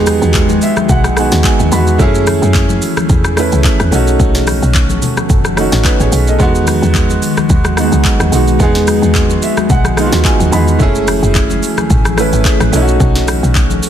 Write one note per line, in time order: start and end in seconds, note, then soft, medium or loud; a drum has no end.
0.00 0.20 E2 loud
0.00 1.95 D#3 medium
0.00 1.16 G#3 loud
0.00 1.95 G#3 medium
0.00 1.17 B3 loud
0.00 1.19 D#4 loud
0.00 1.95 F#4 medium
0.00 2.02 G4 loud
0.00 2.02 G#4 loud
0.07 cross-stick loud
0.07 open hi-hat medium
0.07 high conga medium
0.07 shaker loud
0.22 0.60 E2 loud
0.22 shaker medium
0.34 kick loud
0.34 clap medium
0.34 shaker medium
0.49 high conga medium
0.49 shaker medium
0.62 0.88 E5 medium
0.62 open hi-hat medium
0.62 shaker medium
0.77 cross-stick medium
0.77 high conga medium
0.77 shaker medium
0.89 1.30 B1 loud
0.89 1.15 F#5 medium
0.89 kick loud
0.89 low conga medium
0.89 shaker medium
1.04 cross-stick medium
1.04 high conga medium
1.04 shaker medium
1.16 1.61 G#3 medium
1.16 1.62 B3 medium
1.16 1.63 D#4 medium
1.16 1.63 F#4 loud
1.16 1.43 G#5 medium
1.16 cross-stick loud
1.16 open hi-hat medium
1.16 shaker loud
1.32 1.44 D#2 medium
1.32 snare medium
1.32 high conga soft
1.32 shaker medium
1.44 1.70 G#5 medium
1.44 kick loud
1.44 clap loud
1.44 shaker medium
1.60 1.71 D#2 medium
1.60 high conga medium
1.60 shaker medium
1.71 1.98 E2 loud
1.71 1.94 G#3 medium
1.71 1.95 B3 medium
1.71 1.95 D#4 medium
1.71 1.96 F#4 loud
1.71 1.98 B5 medium
1.71 open hi-hat medium
1.71 shaker medium
1.87 shaker medium
1.98 2.40 F#2 loud
1.98 3.90 E3 medium
1.98 2.87 A3 loud
1.98 3.90 A3 medium
1.98 2.88 C#4 loud
1.98 2.89 E4 loud
1.98 3.90 G#4 medium
1.98 2.89 G#4 loud
1.98 kick loud
1.98 low conga medium
1.98 shaker medium
2.15 shaker medium
2.27 cross-stick loud
2.27 open hi-hat medium
2.27 high conga medium
2.27 shaker loud
2.42 2.80 F#2 loud
2.42 shaker medium
2.54 kick loud
2.54 clap medium
2.54 shaker medium
2.69 high conga medium
2.69 shaker medium
2.82 open hi-hat medium
2.82 shaker medium
2.97 cross-stick medium
2.97 high conga medium
2.97 shaker medium
3.09 3.50 E2 medium
3.09 kick loud
3.09 low conga medium
3.09 shaker medium
3.24 cross-stick loud
3.24 high conga medium
3.24 shaker medium
3.36 3.82 A3 medium
3.36 3.82 C#4 medium
3.36 3.83 E4 medium
3.36 3.84 B4 medium
3.36 cross-stick loud
3.36 open hi-hat medium
3.36 shaker medium
3.52 3.64 C#2 medium
3.52 high conga soft
3.52 shaker medium
3.64 kick loud
3.64 clap loud
3.64 shaker medium
3.80 3.91 E2 medium
3.80 cross-stick loud
3.80 high conga medium
3.80 shaker medium
3.91 4.18 B1 loud
3.91 10.76 D#3 medium
3.91 4.80 A3 medium
3.91 6.37 B3 medium
3.91 4.81 C#4 medium
3.91 4.81 D#4 medium
3.91 4.82 F#4 loud
3.91 6.37 A4 medium
3.91 open hi-hat medium
3.91 shaker loud
4.07 shaker medium
4.19 4.60 B1 loud
4.19 kick loud
4.19 low conga medium
4.19 shaker medium
4.35 snare medium
4.35 shaker medium
4.47 cross-stick loud
4.47 open hi-hat medium
4.47 high conga medium
4.47 shaker loud
4.62 5.00 B1 loud
4.62 shaker soft
4.75 kick loud
4.75 clap medium
4.75 shaker medium
4.89 high conga medium
4.89 shaker medium
5.02 open hi-hat medium
5.02 low conga medium
5.02 shaker medium
5.17 cross-stick medium
5.17 high conga medium
5.17 shaker medium
5.29 5.70 F#1 loud
5.29 kick loud
5.29 low conga medium
5.29 shaker medium
5.44 cross-stick medium
5.44 high conga medium
5.44 shaker medium
5.56 6.02 A3 medium
5.56 6.02 C#4 medium
5.56 6.03 D#4 medium
5.56 5.85 F#4 medium
5.56 cross-stick loud
5.56 open hi-hat medium
5.56 shaker medium
5.72 5.84 A1 medium
5.72 snare medium
5.72 high conga soft
5.72 shaker medium
5.84 6.00 F#4 medium
5.84 5.99 B4 medium
5.84 kick loud
5.84 clap loud
5.84 shaker medium
6.00 6.12 A1 medium
6.00 6.27 G#4 medium
6.00 6.26 C#5 medium
6.00 high conga medium
6.00 shaker medium
6.12 6.38 B1 loud
6.12 open hi-hat medium
6.12 shaker loud
6.27 6.54 A4 medium
6.27 6.54 D#5 medium
6.27 shaker soft
6.38 6.80 E2 loud
6.38 7.28 G#3 loud
6.38 10.76 G#3 medium
6.38 7.28 B3 loud
6.38 7.29 D#4 loud
6.38 10.76 F#4 medium
6.38 7.30 F#4 loud
6.38 kick loud
6.38 low conga medium
6.38 shaker medium
6.55 shaker medium
6.67 cross-stick loud
6.67 open hi-hat medium
6.67 high conga medium
6.67 shaker loud
6.82 7.20 E2 loud
6.82 shaker soft
6.95 kick medium
6.95 clap medium
6.95 shaker medium
7.10 high conga medium
7.10 shaker medium
7.22 open hi-hat medium
7.22 shaker medium
7.37 cross-stick medium
7.37 high conga medium
7.37 shaker medium
7.49 7.90 D#2 medium
7.49 kick loud
7.49 low conga medium
7.49 shaker medium
7.64 cross-stick loud
7.64 high conga medium
7.64 shaker medium
7.76 7.84 F#3 medium
7.76 8.23 B3 medium
7.76 8.23 D#4 medium
7.76 8.24 F#4 medium
7.76 cross-stick loud
7.76 open hi-hat medium
7.76 shaker loud
7.83 8.25 G#3 medium
7.92 8.04 C#2 medium
7.92 high conga soft
7.92 shaker medium
8.05 kick loud
8.05 clap loud
8.05 shaker medium
8.20 8.31 D#2 medium
8.20 cross-stick loud
8.20 high conga medium
8.20 shaker medium
8.31 8.58 B1 loud
8.31 8.55 G#3 medium
8.31 8.55 B3 medium
8.31 8.56 D#4 medium
8.31 8.56 F#4 medium
8.31 open hi-hat medium
8.31 shaker loud
8.48 shaker medium
8.59 9.00 E2 loud
8.59 9.48 G#3 loud
8.59 9.49 B3 loud
8.59 9.49 D#4 loud
8.59 9.50 G#4 loud
8.59 kick loud
8.59 low conga medium
8.59 shaker medium
8.75 snare medium
8.75 shaker medium
8.87 cross-stick loud
8.87 open hi-hat medium
8.87 high conga medium
8.87 shaker loud
9.02 9.40 E2 loud
9.02 shaker soft
9.15 kick loud
9.15 clap medium
9.15 shaker medium
9.30 high conga medium
9.30 shaker medium
9.42 9.68 E5 medium
9.42 open hi-hat medium
9.42 shaker medium
9.57 cross-stick medium
9.57 high conga medium
9.57 shaker medium
9.69 10.10 B1 loud
9.69 10.22 F#5 medium
9.69 kick loud
9.69 low conga medium
9.69 shaker medium
9.84 cross-stick medium
9.84 high conga medium
9.84 shaker medium
9.96 10.42 G#3 medium
9.96 10.43 B3 medium
9.96 10.43 D#4 medium
9.96 10.06 F4 medium
9.96 cross-stick loud
9.96 open hi-hat medium
9.96 shaker loud
10.07 10.47 F#4 medium
10.12 10.24 D#2 medium
10.12 snare medium
10.12 high conga soft
10.12 shaker medium
10.25 10.51 G#5 medium
10.25 kick loud
10.25 clap loud
10.25 shaker medium
10.40 10.52 D#2 medium
10.40 high conga medium
10.40 shaker medium
10.51 10.79 E2 loud
10.51 10.74 G#3 medium
10.51 10.75 B3 medium
10.51 10.76 D#4 medium
10.51 10.76 G#4 loud
10.51 10.78 B5 medium
10.51 open hi-hat medium
10.51 shaker loud
10.68 shaker medium
10.79 11.21 F#1 loud
10.79 12.71 E3 medium
10.79 11.68 A3 loud
10.79 12.71 A3 medium
10.79 11.69 C#4 loud
10.79 11.69 E4 loud
10.79 12.71 G#4 medium
10.79 11.70 G#4 loud
10.79 kick loud
10.79 low conga medium
10.79 shaker medium
10.95 shaker medium
11.08 cross-stick loud
11.08 open hi-hat medium
11.08 high conga medium
11.08 shaker loud
11.23 11.61 F#1 loud
11.23 shaker soft
11.35 kick loud
11.35 clap medium
11.35 shaker medium
11.50 high conga medium
11.50 shaker medium
11.63 open hi-hat soft
11.63 shaker medium
11.78 cross-stick medium
11.78 high conga medium
11.78 shaker medium
11.90 12.31 A1 loud
11.90 kick loud
11.90 low conga medium
11.90 shaker medium
12.04 cross-stick medium
12.04 high conga medium
12.04 shaker medium
12.16 12.62 A3 medium
12.16 12.63 C#4 medium
12.16 12.64 E4 medium
12.16 12.64 B4 loud
12.16 cross-stick loud
12.16 open hi-hat medium
12.16 shaker medium
12.33 12.45 G#1 medium
12.33 high conga soft
12.33 shaker medium
12.45 kick loud
12.45 clap loud
12.45 shaker medium
12.60 12.72 A1 medium
12.60 cross-stick loud
12.60 high conga medium
12.60 shaker medium
12.72 12.99 B1 loud
12.72 13.89 D#3 medium
12.72 13.61 A3 medium
12.72 13.89 B3 medium
12.72 13.61 C#4 medium
12.72 13.62 D#4 medium
12.72 12.81 E4 medium
12.72 13.89 A4 medium
12.72 open hi-hat medium
12.72 shaker loud
12.82 13.66 F#4 loud
12.88 shaker medium
13.00 13.41 B1 loud
13.00 kick loud
13.00 low conga medium
13.00 shaker medium
13.16 snare medium
13.16 shaker medium
13.28 cross-stick loud
13.28 open hi-hat medium
13.28 high conga medium
13.28 shaker loud
13.43 13.81 B1 loud
13.43 shaker soft
13.55 kick medium
13.55 clap medium
13.55 shaker medium
13.70 high conga medium
13.70 shaker medium
13.83 open hi-hat medium
13.83 shaker medium